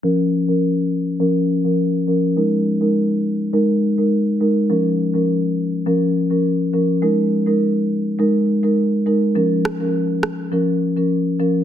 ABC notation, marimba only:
X:1
M:4/4
L:1/16
Q:1/4=103
K:Db
V:1 name="Marimba"
[F,DB]3 [F,DB] z4 [F,DB]3 [F,DB]3 [F,DB]2 | [A,EB]3 [A,EB] z4 [A,EB]3 [A,EB]3 [A,EB]2 | [F,DB]3 [F,DB] z4 [F,DB]3 [F,DB]3 [F,DB]2 | [A,EB]3 [A,EB] z4 [A,EB]3 [A,EB]3 [A,EB]2 |
[F,DB]3 [F,DB] z4 [F,DB]3 [F,DB]3 [F,DB]2 |]